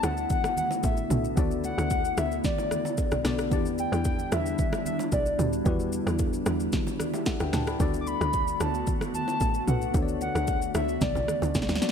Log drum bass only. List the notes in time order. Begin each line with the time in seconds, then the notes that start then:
0.03 D2
0.84 A1
1.10 B1
1.37 D2
1.78 D2
2.18 D2
3.12 B1
3.25 B1
3.52 E2
3.92 E2
4.32 E2
5.12 B1
5.39 D2
5.66 E2
6.07 E2
6.46 E2
7.40 D2
7.53 D2
7.80 D2
8.21 D2
8.60 D2
9.41 A1
9.68 B1
9.94 D2
10.35 D2
10.75 D2
11.02 B1
11.15 B1
11.42 D2
11.55 B1
11.69 D2